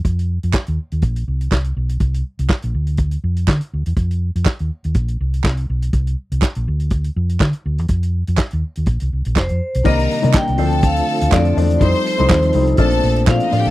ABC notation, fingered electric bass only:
X:1
M:4/4
L:1/16
Q:"Swing 16ths" 1/4=122
K:Bb
V:1 name="Fingered electric bass" clef=bass
F,,3 F,, z E,, z E,, B,,,2 C,,2 C,,2 =B,,,2 | C,,2 z C,, z B,,, D,,4 F,,2 D, z D,, =E,, | F,,3 F,, z E,, z E,, B,,,2 C,,2 C,,2 =B,,,2 | C,,2 z C,, z B,,, D,,4 F,,2 D, z D,, =E,, |
F,,3 F,, z E,, z E,, B,,, C,, C,, B,,, F,,, F,, z =B,,, | C,,2 z C, z C,, D,,4 z D,, F,,2 =E,,2 | F,, z2 C,, E,,2 C,,2 B,,,2 B,,,2 B,, z A,, =B,,, |]